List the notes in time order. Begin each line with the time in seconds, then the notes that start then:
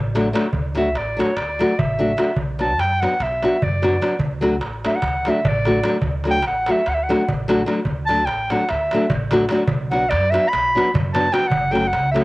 Already playing: A1
0.15 F#3 A3 D4 F#4, darbuka tek
0.25 darbuka tek
0.33 F#3 A3 D4 F#4, darbuka tek
0.45 darbuka tek
0.53 D2, darbuka dum
0.75 F#3 A3 D4 F#4 E5, darbuka tek
0.95 A1 D5, darbuka tek
1.08 darbuka tek
1.17 F#3 A3 D4 F#4 C#5, darbuka tek
1.29 darbuka tek
1.36 D2 D5, darbuka tek
1.49 darbuka tek
1.59 F#3 A3 D4 F#4, darbuka tek
1.79 A1 E5, darbuka dum
1.99 F#3 A3 D4 F#4
2.08 darbuka tek
2.17 F#3 A3 D4 F#4, darbuka tek
2.28 darbuka tek
2.36 B1, darbuka dum
2.59 F#3 B3 D4 F#4 A5, darbuka tek
2.78 F#2 G5, darbuka tek
2.91 darbuka tek
3.01 F#3 B3 D4 F#4 F#5, darbuka tek
3.11 darbuka tek
3.20 B1 E5, darbuka tek
3.32 darbuka tek
3.42 F#3 B3 D4 F#4, darbuka tek
3.62 F#2 D5, darbuka dum
3.82 F#3 B3 D4 F#4, darbuka tek
3.92 darbuka tek
4.01 F#3 B3 D4 F#4, darbuka tek
4.10 darbuka tek
4.19 D2, darbuka dum
4.31 darbuka tek
4.41 F#3 A3 D4 F#4, darbuka tek
4.61 A1, darbuka tek
4.74 darbuka tek
4.84 F#3 A3 D4 F#4 E5, darbuka tek
4.95 F#5
5.02 D2, darbuka tek, darbuka dum
5.14 darbuka tek
5.25 F#3 A3 D4 F#4 E5, darbuka tek
5.36 darbuka tek
5.45 A1 D5, darbuka dum
5.54 darbuka tek
5.65 F#3 A3 D4 F#4, darbuka tek
5.75 darbuka tek
5.83 F#3 A3 D4 F#4, darbuka tek
5.92 darbuka tek
6.01 D2, darbuka dum
6.24 F#3 A3 D4 F#4, darbuka tek
6.30 G5
6.42 A1, darbuka tek
6.47 F#5
6.55 darbuka tek
6.66 F#3 A3 D4 F#4, darbuka tek
6.71 E5
6.76 darbuka tek
6.86 D2 F#5, darbuka tek
6.94 E5, darbuka tek
7.03 F#5
7.09 F#3 A3 D4 F#4, darbuka tek
7.29 A1, darbuka dum
7.48 F#3 A3 D4 F#4, darbuka tek
7.59 darbuka tek
7.66 F#3 A3 D4 F#4, darbuka tek
7.85 D2, darbuka dum
8.06 F#3 A3 D4 A5, darbuka tek
8.11 F#4
8.25 A1 G5, darbuka tek
8.39 darbuka tek
8.50 F#3 A3 D4 F#4 F#5, darbuka tek
8.60 darbuka tek
8.69 D2 E5, darbuka tek
8.81 darbuka tek
8.91 F#3 A3 D4 F#4, darbuka tek
9.10 A1, darbuka dum
9.31 F#3 A3 D4 F#4, darbuka tek
9.40 darbuka tek
9.49 F#3 A3 D4 F#4, darbuka tek
9.58 darbuka tek
9.67 B1, darbuka dum
9.91 F#3 B3 D4 F#4 F#5, darbuka tek
10.09 F#2 D5, darbuka tek
10.23 darbuka tek
10.30 F#3 B3 D4 E5, darbuka tek
10.34 F#4
10.49 B5
10.53 B1, darbuka tek
10.66 darbuka tek
10.75 F#3 B3 D4 F#4, darbuka tek
10.94 F#2, darbuka dum
11.14 F#3 B3 D4 F#4 A5, darbuka tek
11.26 darbuka tek
11.32 F#3 B3 D4 F#4 G5, darbuka tek
11.43 darbuka tek
11.48 F#1 F#5, darbuka dum
11.71 F#3 A3 C#4 F#4 G5
11.75 darbuka tek
11.85 F#5, darbuka tek
11.93 C#2, darbuka tek
12.05 darbuka tek
12.11 F#3 A3 C#4 E5
12.16 F#4, darbuka tek